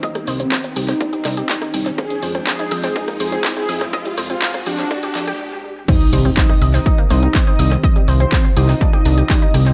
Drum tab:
CC |----------------|----------------|----------------|x---------------|
HH |xxoxxxooxxoxoxox|xxoxxxooxxoxxxox|xxoxxxooxxox----|xxoxxxooxxoxxxox|
CP |----x-----x-x---|----x-------x---|----x-----x-----|----x-------x---|
SD |-r--r--r--r--r--|r--r--r--r--r--r|--r--r--r--r----|r----r----r----r|
BD |o---o---o---o---|o---o---o---o---|o---o---o-------|o---o---o---o---|

CC |----------------|
HH |xxoxxxooxxoxoxox|
CP |----x-------x---|
SD |----r----r----r-|
BD |o---o---o---o---|